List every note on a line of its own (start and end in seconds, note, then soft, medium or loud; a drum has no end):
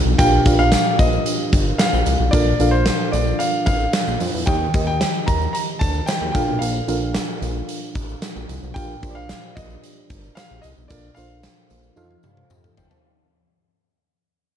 0.00 0.19 D4 medium
0.00 0.19 F4 medium
0.00 0.21 A4 medium
0.00 0.20 A#4 medium
0.00 0.20 F5 medium
0.06 0.16 B1 medium
0.18 0.39 A#1 loud
0.18 0.96 A#2 medium
0.18 0.38 D4 medium
0.18 0.38 F4 medium
0.18 0.38 G4 medium
0.18 0.39 A#4 medium
0.18 0.39 F5 medium
0.18 0.60 G5 loud
0.18 kick loud
0.18 closed hi-hat loud
0.18 tambourine medium
0.45 0.76 A#1 loud
0.45 1.23 D4 medium
0.45 1.23 F4 medium
0.45 1.23 G4 medium
0.45 1.23 A#4 medium
0.45 1.23 F5 medium
0.45 kick loud
0.45 closed hi-hat medium
0.45 tambourine medium
0.59 1.00 F5 loud
0.72 snare loud
0.72 closed hi-hat loud
0.72 tambourine medium
0.99 1.19 A#1 loud
0.99 1.82 D#5 loud
0.99 kick loud
0.99 closed hi-hat medium
0.99 tambourine medium
1.13 tambourine soft
1.26 closed hi-hat medium
1.26 tambourine medium
1.53 1.73 G1 loud
1.53 kick medium
1.53 closed hi-hat medium
1.53 tambourine medium
1.78 2.29 F5 loud
1.78 snare loud
1.78 closed hi-hat loud
1.78 tambourine medium
1.93 2.03 A#1 medium
1.93 tambourine soft
2.06 2.17 C2 medium
2.06 closed hi-hat medium
2.06 tambourine medium
2.20 2.30 B1 medium
2.31 2.53 A#1 loud
2.31 3.10 A#2 medium
2.31 2.52 D4 medium
2.31 2.52 F4 medium
2.31 2.53 A4 medium
2.31 2.53 A#4 medium
2.31 2.74 D5 loud
2.31 2.53 F5 medium
2.31 kick loud
2.31 closed hi-hat loud
2.31 tambourine soft
2.60 2.90 A#1 loud
2.60 3.37 D4 medium
2.60 3.37 F4 medium
2.60 3.37 A4 medium
2.60 3.37 A#4 medium
2.60 3.37 F5 medium
2.60 closed hi-hat medium
2.60 tambourine medium
2.71 3.14 C5 medium
2.86 snare loud
2.86 closed hi-hat loud
2.86 tambourine medium
3.12 3.33 A#1 medium
3.12 3.40 D5 medium
3.12 closed hi-hat medium
3.12 tambourine medium
3.27 tambourine soft
3.39 3.65 F5 medium
3.39 closed hi-hat medium
3.39 tambourine medium
3.66 3.87 A1 loud
3.66 4.16 F5 loud
3.66 kick medium
3.66 closed hi-hat medium
3.66 tambourine medium
3.80 tambourine soft
3.93 snare loud
3.93 closed hi-hat loud
3.93 tambourine medium
4.07 4.17 A#1 medium
4.07 tambourine soft
4.20 4.31 F2 medium
4.20 open hi-hat medium
4.20 tambourine medium
4.34 4.44 E2 medium
4.46 4.67 D#2 loud
4.46 5.24 D#3 medium
4.46 4.67 G4 medium
4.46 4.67 A#4 medium
4.46 4.67 D#5 medium
4.46 4.85 G5 loud
4.46 kick loud
4.46 closed hi-hat loud
4.46 tambourine soft
4.74 5.04 D#2 loud
4.74 5.51 G4 medium
4.74 5.51 A#4 medium
4.74 5.52 D#5 medium
4.74 kick loud
4.74 closed hi-hat medium
4.74 tambourine medium
4.87 5.29 G5 loud
5.01 snare loud
5.01 closed hi-hat loud
5.01 tambourine medium
5.26 5.48 D#2 medium
5.26 5.51 A#5 loud
5.26 kick loud
5.26 closed hi-hat medium
5.26 tambourine medium
5.42 tambourine soft
5.53 5.59 A#5 loud
5.53 closed hi-hat medium
5.53 tambourine medium
5.79 6.01 D2 loud
5.79 6.08 A5 loud
5.79 kick loud
5.79 closed hi-hat medium
5.79 tambourine medium
5.94 tambourine soft
6.06 6.30 G5 loud
6.06 snare loud
6.06 closed hi-hat loud
6.06 tambourine loud
6.06 tambourine medium
6.21 6.31 D#2 medium
6.32 6.45 A#1 medium
6.32 7.11 A#2 medium
6.32 6.78 D4 medium
6.32 6.78 F4 medium
6.32 6.78 A4 medium
6.32 6.78 A#4 medium
6.32 6.78 F5 medium
6.32 6.58 G5 medium
6.32 kick loud
6.32 closed hi-hat medium
6.32 tambourine medium
6.47 6.58 B1 medium
6.59 6.81 A#1 loud
6.59 8.44 F5 medium
6.59 closed hi-hat loud
6.59 tambourine soft
6.88 7.18 A#1 loud
6.88 7.65 D4 medium
6.88 7.65 F4 medium
6.88 7.66 A4 medium
6.88 7.66 A#4 medium
6.88 7.66 F5 medium
6.88 closed hi-hat medium
6.88 tambourine medium
7.14 snare loud
7.14 closed hi-hat loud
7.14 tambourine medium
7.42 7.62 A#1 loud
7.42 closed hi-hat medium
7.42 tambourine medium
7.69 closed hi-hat medium
7.69 tambourine medium
7.95 8.15 A1 loud
7.95 kick loud
7.95 closed hi-hat medium
7.95 tambourine medium
8.09 tambourine soft
8.22 snare loud
8.22 closed hi-hat loud
8.22 tambourine medium
8.36 8.46 A#1 medium
8.36 tambourine soft
8.49 8.59 C2 medium
8.49 closed hi-hat medium
8.49 tambourine medium
8.63 8.73 B1 medium
8.63 tambourine soft
8.74 8.96 A#1 loud
8.74 9.53 A#2 medium
8.74 8.95 D4 medium
8.74 8.95 F4 medium
8.74 8.95 G4 medium
8.74 8.95 A#4 medium
8.74 8.96 F5 medium
8.74 9.16 G5 loud
8.74 kick loud
8.74 closed hi-hat loud
8.74 tambourine soft
9.02 9.33 A#1 loud
9.02 9.80 D4 medium
9.02 9.80 F4 medium
9.02 9.80 G4 medium
9.02 9.80 A#4 medium
9.02 9.10 C5 medium
9.02 kick loud
9.02 closed hi-hat medium
9.02 tambourine medium
9.10 9.84 D5 medium
9.15 9.57 F5 loud
9.29 snare loud
9.29 closed hi-hat loud
9.29 tambourine medium
9.56 9.77 A#1 medium
9.56 10.06 D#5 medium
9.56 kick loud
9.56 closed hi-hat medium
9.56 tambourine medium
9.70 tambourine soft
9.83 closed hi-hat medium
9.83 tambourine medium
10.10 10.30 G1 loud
10.10 kick loud
10.10 closed hi-hat medium
10.10 tambourine medium
10.24 tambourine soft
10.35 10.61 F5 loud
10.35 snare loud
10.35 closed hi-hat loud
10.35 tambourine medium
10.50 10.61 A#1 medium
10.50 tambourine soft
10.62 10.74 C2 loud
10.62 10.68 D#5 loud
10.62 closed hi-hat medium
10.62 tambourine medium
10.77 10.87 B1 medium
10.77 tambourine soft
10.88 11.11 A#1 loud
10.88 11.67 A#2 medium
10.88 11.09 D4 medium
10.88 11.09 F4 medium
10.88 11.10 A4 medium
10.88 11.10 A#4 medium
10.88 11.17 D5 loud
10.88 11.10 F5 medium
10.88 kick loud
10.88 closed hi-hat loud
10.88 tambourine soft
11.15 11.48 A#1 loud
11.15 11.94 D4 medium
11.15 11.94 F4 medium
11.15 11.94 A4 medium
11.15 11.94 A#4 medium
11.15 11.95 C5 medium
11.15 12.19 F5 loud
11.15 closed hi-hat medium
11.15 tambourine medium
11.43 snare loud
11.43 closed hi-hat loud
11.43 tambourine medium
11.70 11.91 A#1 loud
11.70 closed hi-hat medium
11.70 tambourine medium
11.83 tambourine soft
11.96 12.17 F2 loud
11.96 12.83 D#4 loud
11.96 12.83 F4 medium
11.96 12.51 A4 medium
11.96 12.51 C5 medium
11.96 12.51 F5 loud
11.96 high tom medium
11.96 tambourine medium
12.11 high tom medium
12.23 12.44 G2 loud
12.23 mid tom medium
12.23 tambourine medium
12.37 mid tom medium
12.50 12.71 F2 loud
12.50 12.64 G4 medium
12.50 12.64 D#5 medium
12.50 mid tom loud
12.50 tambourine loud
12.64 12.77 A4 medium
12.64 12.77 F5 medium
12.64 mid tom medium
12.64 tambourine soft
12.77 12.87 F#1 medium
12.77 12.90 G5 medium
12.77 floor tom loud
12.77 tambourine medium
12.90 13.17 C5 medium
12.90 13.17 A5 medium
12.90 floor tom loud
12.90 tambourine soft